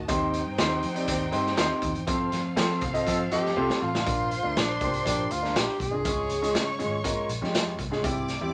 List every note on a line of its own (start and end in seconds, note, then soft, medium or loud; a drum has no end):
0.08 0.40 D#2 loud
0.08 0.40 C4 medium
0.08 0.40 D#4 medium
0.08 2.03 D#4 medium
0.08 0.40 G4 medium
0.08 2.03 C5 medium
0.08 0.40 C5 loud
0.08 2.03 G5 loud
0.08 kick loud
0.08 closed hi-hat loud
0.34 closed hi-hat medium
0.46 0.57 G2 medium
0.58 0.79 D#2 medium
0.58 0.82 C4 medium
0.58 0.69 D#4 medium
0.58 0.82 D#4 medium
0.58 0.82 G4 medium
0.58 0.70 G4 medium
0.58 0.82 C5 medium
0.58 0.70 C5 medium
0.58 snare loud
0.58 closed hi-hat medium
0.83 1.04 F2 medium
0.83 closed hi-hat medium
0.95 1.19 C4 medium
0.95 1.19 D#4 medium
0.95 1.19 G4 medium
0.95 1.19 D5 medium
0.95 closed hi-hat medium
1.08 1.29 D#2 medium
1.08 1.43 D#3 medium
1.08 1.43 C4 medium
1.08 1.43 G4 loud
1.08 kick medium
1.08 closed hi-hat loud
1.32 1.54 G2 medium
1.32 1.48 C4 medium
1.32 1.48 D#4 medium
1.32 1.49 G4 medium
1.32 1.49 C5 loud
1.32 closed hi-hat medium
1.46 snare soft
1.57 1.68 D#2 medium
1.57 1.89 C4 medium
1.57 1.68 D#4 medium
1.57 1.89 D#4 medium
1.57 1.89 G4 medium
1.57 1.69 G4 medium
1.57 1.89 C5 medium
1.57 1.69 C5 medium
1.57 snare loud
1.57 closed hi-hat loud
1.82 1.93 D#2 medium
1.82 kick medium
1.82 closed hi-hat medium
1.95 2.06 E2 medium
1.95 closed hi-hat soft
2.07 2.28 F2 loud
2.07 2.38 C4 loud
2.07 4.02 C4 medium
2.07 2.39 F4 medium
2.07 4.02 A4 medium
2.07 2.39 A4 medium
2.07 2.39 C5 loud
2.07 4.02 F5 medium
2.07 kick loud
2.07 closed hi-hat medium
2.32 2.53 F2 medium
2.32 snare soft
2.32 closed hi-hat medium
2.56 2.78 F3 medium
2.56 2.80 C4 medium
2.56 2.68 C4 medium
2.56 2.80 F4 medium
2.56 2.68 F4 medium
2.56 2.80 A4 medium
2.56 2.68 A4 medium
2.56 2.80 C5 medium
2.56 snare loud
2.56 closed hi-hat medium
2.81 3.03 C2 loud
2.81 kick medium
2.81 closed hi-hat medium
2.93 3.17 C4 medium
2.93 3.18 F4 medium
2.93 3.18 A4 medium
2.93 3.18 D#5 loud
2.93 closed hi-hat medium
3.06 3.27 F3 medium
3.06 3.43 F3 loud
3.06 3.42 C4 medium
3.06 3.42 A4 loud
3.06 kick medium
3.06 closed hi-hat loud
3.32 3.53 F2 medium
3.32 3.47 C4 medium
3.32 3.47 F4 medium
3.32 3.84 G4 loud
3.32 3.48 A4 medium
3.32 3.48 D#5 loud
3.32 closed hi-hat medium
3.46 snare soft
3.56 3.68 C2 medium
3.56 3.67 C4 medium
3.56 3.88 C4 medium
3.56 3.88 F4 medium
3.56 3.68 F4 medium
3.56 3.88 A4 medium
3.56 3.68 A4 medium
3.56 3.88 C5 loud
3.70 snare medium
3.82 4.03 A1 medium
3.82 4.58 F4 medium
3.95 snare medium
4.05 4.37 A#1 loud
4.05 4.29 A#3 medium
4.05 4.30 D4 medium
4.05 4.30 F4 medium
4.05 4.30 A#4 medium
4.05 5.77 C5 medium
4.05 5.77 C6 loud
4.05 kick loud
4.05 closed hi-hat medium
4.31 closed hi-hat medium
4.42 4.54 D2 medium
4.42 4.66 A#3 medium
4.42 4.67 D4 medium
4.42 4.67 F4 medium
4.42 4.67 A#4 medium
4.57 4.77 A#1 medium
4.57 5.06 D4 medium
4.57 snare loud
4.57 closed hi-hat medium
4.80 5.02 C2 medium
4.80 4.96 A#3 medium
4.80 4.96 D4 medium
4.80 4.97 F4 medium
4.80 4.97 G4 medium
4.80 kick medium
4.80 closed hi-hat medium
4.94 closed hi-hat medium
5.05 5.26 A#1 medium
5.05 5.29 A#3 medium
5.05 5.29 D4 medium
5.05 5.33 D4 medium
5.05 5.29 F4 medium
5.05 5.29 G4 medium
5.05 kick medium
5.05 closed hi-hat medium
5.31 5.52 D2 medium
5.31 5.58 F4 medium
5.31 closed hi-hat medium
5.42 5.74 A#3 medium
5.42 5.74 D4 medium
5.42 5.74 F4 medium
5.42 5.74 A#4 medium
5.42 snare soft
5.56 5.66 A#1 medium
5.56 5.81 G4 medium
5.56 snare loud
5.56 closed hi-hat loud
5.80 5.90 B1 loud
5.80 6.76 G#4 medium
5.80 kick medium
5.80 closed hi-hat medium
5.91 6.03 C2 medium
5.91 6.00 A#3 medium
5.91 6.00 D4 medium
5.91 6.00 F4 medium
5.91 6.00 A#4 medium
6.04 6.26 C#2 loud
6.04 6.28 G#3 medium
6.04 6.28 C#4 medium
6.04 6.28 F4 medium
6.04 6.29 G#4 medium
6.04 7.76 C#5 medium
6.04 7.75 C#6 loud
6.04 kick loud
6.04 closed hi-hat loud
6.30 6.51 C#2 medium
6.30 closed hi-hat medium
6.42 6.66 G#3 medium
6.42 6.66 C#4 medium
6.42 6.66 F4 medium
6.42 6.66 G#4 medium
6.42 closed hi-hat medium
6.55 6.82 C#3 medium
6.55 snare loud
6.55 closed hi-hat medium
6.79 7.11 G#1 medium
6.79 6.95 G#3 medium
6.79 6.95 C#4 medium
6.79 6.95 F4 medium
6.79 6.95 G#4 medium
6.79 closed hi-hat medium
7.03 7.27 G#3 medium
7.03 7.28 C#4 medium
7.03 7.28 F4 medium
7.03 7.28 A#4 medium
7.03 kick medium
7.03 closed hi-hat loud
7.29 7.40 A#1 medium
7.29 closed hi-hat medium
7.41 7.73 F2 medium
7.41 7.73 G#3 medium
7.41 7.73 C#4 medium
7.41 7.73 F4 medium
7.41 7.73 G4 medium
7.41 snare soft
7.55 snare loud
7.55 closed hi-hat medium
7.78 7.99 C2 medium
7.78 kick medium
7.78 closed hi-hat medium
7.91 7.99 G#3 medium
7.91 7.99 C#4 medium
7.91 7.99 F4 medium
7.91 7.99 G#4 loud
7.91 snare soft
8.03 8.35 C2 loud
8.03 8.27 G3 medium
8.03 8.27 C4 medium
8.03 8.27 E4 medium
8.03 8.27 G4 medium
8.03 8.53 D5 loud
8.03 8.53 D6 loud
8.03 kick loud
8.03 closed hi-hat loud
8.28 snare soft
8.28 closed hi-hat medium
8.41 8.51 E2 medium
8.41 8.53 G3 medium
8.41 8.53 C4 medium
8.41 8.53 E4 medium
8.41 8.53 G4 medium